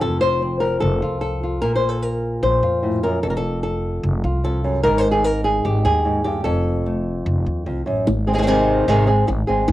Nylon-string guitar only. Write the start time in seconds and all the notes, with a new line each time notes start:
Already playing: C4
0.01 F2 A4
0.21 C5
0.42 C4
0.60 A#4
0.80 A4
1.03 F4
1.21 A4
1.43 F4
1.62 A#2 A#4
1.76 C5
1.89 A4
2.02 A#4
2.43 C5
2.63 F4
2.83 A2
3.03 F#2 A#4
3.23 F2 A4
3.30 A#4
3.37 A4
3.63 A4
4.24 F4
4.44 F2 A4
4.64 F#2
4.83 G#2 A#4
4.98 C5
5.11 G#4
5.24 A#4
5.44 G#4
5.65 G4
5.85 G#4
6.05 G#2
6.24 G2 G4
6.44 F2 A4
6.86 A3
7.67 F2
7.86 F#2
8.07 muted nylon-string guitar stroke
8.27 G#3 C4 G#4
8.33 D#3 G#3 C4 G#4
8.38 D#3 G#3 C4 G#4
8.42 D#3 G#3 C4 G#4
8.47 C3 D#3 G#3 C4 G#4
8.88 C3 D#3 G#3 C4 G#4
9.07 G#3 C4 G#4
9.27 muted nylon-string guitar stroke
9.47 G#3 C4 G#4
9.68 muted nylon-string guitar stroke